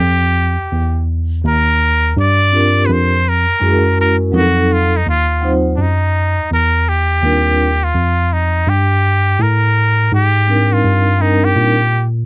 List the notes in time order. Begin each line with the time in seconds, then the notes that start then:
Already playing: G4
0.00 F2
0.59 E2
0.72 E2
1.44 D#2 A#4
2.17 G2 D5
2.51 C4 D4 F4 G4 A#4
2.86 F2 B4
2.93 C5
3.29 A#4
3.60 F#2 G#3 C#4 E4 F#4 G#4
3.70 A#4
4.01 A#4
4.32 F2 F3 F#3 C4 D#4 A4
4.37 F#4
4.73 F4
4.97 D#4
5.06 D#2 F4
5.41 F#3 C4 D#4 F4 C5
5.76 F#2 D4
5.81 D#4
6.37 E2
6.50 E2 A#4
6.88 G4
7.21 D#2 G3 C4 D4 F4 A#4
7.84 F4
7.95 F2
8.33 D#4
8.67 G2 G4
9.39 A2 A#4
10.12 G#2 G4
10.46 G3 C4 D4 D#4 A#4
10.73 F4
10.84 G2
11.18 G3 C4 D4 D#4 A#4
11.45 G4
11.56 A#2